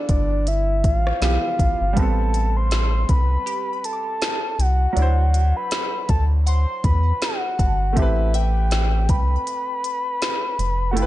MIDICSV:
0, 0, Header, 1, 6, 480
1, 0, Start_track
1, 0, Key_signature, 0, "minor"
1, 0, Tempo, 750000
1, 1259, Time_signature, 4, 2, 24, 8
1, 7082, End_track
2, 0, Start_track
2, 0, Title_t, "Soft synth lead"
2, 0, Program_c, 0, 80
2, 67, Note_on_c, 0, 74, 97
2, 306, Note_on_c, 0, 76, 102
2, 316, Note_off_c, 0, 74, 0
2, 544, Note_on_c, 0, 77, 98
2, 554, Note_off_c, 0, 76, 0
2, 782, Note_off_c, 0, 77, 0
2, 785, Note_on_c, 0, 77, 94
2, 1264, Note_on_c, 0, 81, 112
2, 1274, Note_off_c, 0, 77, 0
2, 1642, Note_on_c, 0, 84, 110
2, 1652, Note_off_c, 0, 81, 0
2, 1984, Note_on_c, 0, 83, 110
2, 1994, Note_off_c, 0, 84, 0
2, 2465, Note_on_c, 0, 81, 110
2, 2474, Note_off_c, 0, 83, 0
2, 2943, Note_on_c, 0, 78, 100
2, 2953, Note_off_c, 0, 81, 0
2, 3562, Note_on_c, 0, 83, 106
2, 3571, Note_off_c, 0, 78, 0
2, 3898, Note_off_c, 0, 83, 0
2, 3902, Note_on_c, 0, 81, 93
2, 3991, Note_off_c, 0, 81, 0
2, 4144, Note_on_c, 0, 84, 106
2, 4382, Note_on_c, 0, 83, 97
2, 4392, Note_off_c, 0, 84, 0
2, 4623, Note_on_c, 0, 78, 97
2, 4633, Note_off_c, 0, 83, 0
2, 5104, Note_on_c, 0, 76, 103
2, 5114, Note_off_c, 0, 78, 0
2, 5344, Note_on_c, 0, 79, 99
2, 5353, Note_off_c, 0, 76, 0
2, 5823, Note_on_c, 0, 83, 112
2, 5832, Note_off_c, 0, 79, 0
2, 6981, Note_off_c, 0, 83, 0
2, 6985, Note_on_c, 0, 78, 73
2, 7022, Note_on_c, 0, 79, 103
2, 7032, Note_off_c, 0, 78, 0
2, 7082, Note_off_c, 0, 79, 0
2, 7082, End_track
3, 0, Start_track
3, 0, Title_t, "Synth pluck"
3, 0, Program_c, 1, 84
3, 0, Note_on_c, 1, 79, 52
3, 910, Note_off_c, 1, 79, 0
3, 2215, Note_on_c, 1, 67, 68
3, 2388, Note_on_c, 1, 83, 55
3, 2515, Note_on_c, 1, 86, 55
3, 3307, Note_off_c, 1, 67, 0
3, 3430, Note_off_c, 1, 83, 0
3, 3576, Note_off_c, 1, 86, 0
3, 4138, Note_on_c, 1, 78, 82
3, 4857, Note_on_c, 1, 81, 57
3, 5228, Note_off_c, 1, 78, 0
3, 5312, Note_off_c, 1, 81, 0
3, 5338, Note_on_c, 1, 76, 85
3, 5816, Note_on_c, 1, 79, 60
3, 5989, Note_on_c, 1, 83, 54
3, 6428, Note_off_c, 1, 76, 0
3, 6907, Note_off_c, 1, 79, 0
3, 7031, Note_off_c, 1, 83, 0
3, 7082, End_track
4, 0, Start_track
4, 0, Title_t, "Grand piano"
4, 0, Program_c, 2, 0
4, 0, Control_c, 2, 64, 127
4, 0, Note_on_c, 2, 52, 63
4, 0, Note_on_c, 2, 53, 66
4, 0, Note_on_c, 2, 59, 59
4, 0, Note_on_c, 2, 69, 73
4, 741, Note_off_c, 2, 53, 0
4, 751, Note_off_c, 2, 59, 0
4, 761, Note_off_c, 2, 52, 0
4, 769, Note_on_c, 2, 53, 50
4, 770, Note_off_c, 2, 69, 0
4, 779, Note_on_c, 2, 59, 47
4, 789, Note_on_c, 2, 52, 44
4, 798, Note_on_c, 2, 67, 54
4, 1236, Note_on_c, 2, 55, 65
4, 1245, Note_off_c, 2, 59, 0
4, 1254, Note_off_c, 2, 53, 0
4, 1255, Note_on_c, 2, 59, 63
4, 1264, Note_off_c, 2, 52, 0
4, 1267, Control_c, 2, 64, 0
4, 1268, Note_off_c, 2, 67, 0
4, 1275, Note_on_c, 2, 60, 61
4, 1294, Note_on_c, 2, 69, 69
4, 1380, Control_c, 2, 64, 127
4, 3142, Note_off_c, 2, 55, 0
4, 3151, Note_off_c, 2, 59, 0
4, 3154, Note_on_c, 2, 54, 65
4, 3161, Note_off_c, 2, 60, 0
4, 3171, Note_off_c, 2, 69, 0
4, 3173, Note_on_c, 2, 62, 61
4, 3188, Control_c, 2, 64, 0
4, 3193, Note_on_c, 2, 64, 59
4, 3213, Note_on_c, 2, 72, 76
4, 3295, Control_c, 2, 64, 127
4, 5061, Note_off_c, 2, 54, 0
4, 5071, Note_off_c, 2, 62, 0
4, 5074, Note_on_c, 2, 57, 63
4, 5080, Note_off_c, 2, 64, 0
4, 5090, Note_off_c, 2, 72, 0
4, 5094, Note_on_c, 2, 60, 60
4, 5106, Control_c, 2, 64, 0
4, 5113, Note_on_c, 2, 67, 60
4, 5133, Note_on_c, 2, 71, 77
4, 5200, Control_c, 2, 64, 127
4, 6981, Note_off_c, 2, 57, 0
4, 6991, Note_off_c, 2, 60, 0
4, 6994, Note_on_c, 2, 57, 66
4, 7001, Note_off_c, 2, 67, 0
4, 7010, Note_off_c, 2, 71, 0
4, 7014, Note_on_c, 2, 64, 60
4, 7028, Control_c, 2, 64, 0
4, 7033, Note_on_c, 2, 65, 59
4, 7053, Note_on_c, 2, 71, 75
4, 7082, Note_off_c, 2, 57, 0
4, 7082, Note_off_c, 2, 64, 0
4, 7082, Note_off_c, 2, 65, 0
4, 7082, Note_off_c, 2, 71, 0
4, 7082, End_track
5, 0, Start_track
5, 0, Title_t, "Analog synth bass"
5, 0, Program_c, 3, 38
5, 58, Note_on_c, 3, 31, 101
5, 539, Note_on_c, 3, 33, 85
5, 549, Note_off_c, 3, 31, 0
5, 720, Note_off_c, 3, 33, 0
5, 779, Note_on_c, 3, 35, 105
5, 884, Note_off_c, 3, 35, 0
5, 1019, Note_on_c, 3, 33, 86
5, 1124, Note_off_c, 3, 33, 0
5, 1159, Note_on_c, 3, 31, 94
5, 1259, Note_on_c, 3, 33, 100
5, 1269, Note_off_c, 3, 31, 0
5, 1953, Note_off_c, 3, 33, 0
5, 1979, Note_on_c, 3, 36, 93
5, 2160, Note_off_c, 3, 36, 0
5, 2937, Note_on_c, 3, 36, 88
5, 3119, Note_off_c, 3, 36, 0
5, 3178, Note_on_c, 3, 38, 115
5, 3541, Note_off_c, 3, 38, 0
5, 3899, Note_on_c, 3, 38, 98
5, 4261, Note_off_c, 3, 38, 0
5, 4378, Note_on_c, 3, 40, 95
5, 4560, Note_off_c, 3, 40, 0
5, 4858, Note_on_c, 3, 31, 97
5, 5098, Note_on_c, 3, 33, 113
5, 5108, Note_off_c, 3, 31, 0
5, 5819, Note_on_c, 3, 36, 91
5, 5828, Note_off_c, 3, 33, 0
5, 6000, Note_off_c, 3, 36, 0
5, 6778, Note_on_c, 3, 29, 89
5, 7018, Note_on_c, 3, 31, 113
5, 7027, Note_off_c, 3, 29, 0
5, 7082, Note_off_c, 3, 31, 0
5, 7082, End_track
6, 0, Start_track
6, 0, Title_t, "Drums"
6, 56, Note_on_c, 9, 42, 74
6, 59, Note_on_c, 9, 36, 105
6, 120, Note_off_c, 9, 42, 0
6, 123, Note_off_c, 9, 36, 0
6, 300, Note_on_c, 9, 42, 74
6, 364, Note_off_c, 9, 42, 0
6, 538, Note_on_c, 9, 42, 65
6, 539, Note_on_c, 9, 36, 99
6, 602, Note_off_c, 9, 42, 0
6, 603, Note_off_c, 9, 36, 0
6, 683, Note_on_c, 9, 37, 101
6, 747, Note_off_c, 9, 37, 0
6, 779, Note_on_c, 9, 42, 61
6, 782, Note_on_c, 9, 38, 107
6, 843, Note_off_c, 9, 42, 0
6, 846, Note_off_c, 9, 38, 0
6, 1019, Note_on_c, 9, 36, 96
6, 1021, Note_on_c, 9, 42, 69
6, 1083, Note_off_c, 9, 36, 0
6, 1085, Note_off_c, 9, 42, 0
6, 1259, Note_on_c, 9, 36, 117
6, 1259, Note_on_c, 9, 42, 74
6, 1323, Note_off_c, 9, 36, 0
6, 1323, Note_off_c, 9, 42, 0
6, 1498, Note_on_c, 9, 42, 66
6, 1562, Note_off_c, 9, 42, 0
6, 1736, Note_on_c, 9, 42, 82
6, 1741, Note_on_c, 9, 38, 117
6, 1800, Note_off_c, 9, 42, 0
6, 1805, Note_off_c, 9, 38, 0
6, 1977, Note_on_c, 9, 42, 69
6, 1979, Note_on_c, 9, 36, 103
6, 2041, Note_off_c, 9, 42, 0
6, 2043, Note_off_c, 9, 36, 0
6, 2221, Note_on_c, 9, 42, 75
6, 2285, Note_off_c, 9, 42, 0
6, 2460, Note_on_c, 9, 42, 64
6, 2524, Note_off_c, 9, 42, 0
6, 2699, Note_on_c, 9, 42, 62
6, 2702, Note_on_c, 9, 38, 103
6, 2763, Note_off_c, 9, 42, 0
6, 2766, Note_off_c, 9, 38, 0
6, 2941, Note_on_c, 9, 42, 69
6, 3005, Note_off_c, 9, 42, 0
6, 3179, Note_on_c, 9, 42, 74
6, 3243, Note_off_c, 9, 42, 0
6, 3419, Note_on_c, 9, 42, 65
6, 3483, Note_off_c, 9, 42, 0
6, 3655, Note_on_c, 9, 42, 85
6, 3661, Note_on_c, 9, 38, 117
6, 3719, Note_off_c, 9, 42, 0
6, 3725, Note_off_c, 9, 38, 0
6, 3896, Note_on_c, 9, 42, 71
6, 3898, Note_on_c, 9, 36, 106
6, 3960, Note_off_c, 9, 42, 0
6, 3962, Note_off_c, 9, 36, 0
6, 4141, Note_on_c, 9, 42, 72
6, 4205, Note_off_c, 9, 42, 0
6, 4378, Note_on_c, 9, 42, 62
6, 4379, Note_on_c, 9, 36, 104
6, 4442, Note_off_c, 9, 42, 0
6, 4443, Note_off_c, 9, 36, 0
6, 4619, Note_on_c, 9, 42, 62
6, 4622, Note_on_c, 9, 38, 100
6, 4683, Note_off_c, 9, 42, 0
6, 4686, Note_off_c, 9, 38, 0
6, 4859, Note_on_c, 9, 36, 95
6, 4861, Note_on_c, 9, 42, 72
6, 4923, Note_off_c, 9, 36, 0
6, 4925, Note_off_c, 9, 42, 0
6, 5099, Note_on_c, 9, 36, 121
6, 5099, Note_on_c, 9, 42, 75
6, 5163, Note_off_c, 9, 36, 0
6, 5163, Note_off_c, 9, 42, 0
6, 5339, Note_on_c, 9, 42, 66
6, 5403, Note_off_c, 9, 42, 0
6, 5576, Note_on_c, 9, 42, 84
6, 5581, Note_on_c, 9, 38, 127
6, 5640, Note_off_c, 9, 42, 0
6, 5645, Note_off_c, 9, 38, 0
6, 5817, Note_on_c, 9, 42, 72
6, 5819, Note_on_c, 9, 36, 106
6, 5881, Note_off_c, 9, 42, 0
6, 5883, Note_off_c, 9, 36, 0
6, 6061, Note_on_c, 9, 42, 70
6, 6125, Note_off_c, 9, 42, 0
6, 6299, Note_on_c, 9, 42, 65
6, 6363, Note_off_c, 9, 42, 0
6, 6539, Note_on_c, 9, 42, 63
6, 6543, Note_on_c, 9, 38, 101
6, 6603, Note_off_c, 9, 42, 0
6, 6607, Note_off_c, 9, 38, 0
6, 6780, Note_on_c, 9, 42, 67
6, 6844, Note_off_c, 9, 42, 0
6, 7019, Note_on_c, 9, 42, 77
6, 7082, Note_off_c, 9, 42, 0
6, 7082, End_track
0, 0, End_of_file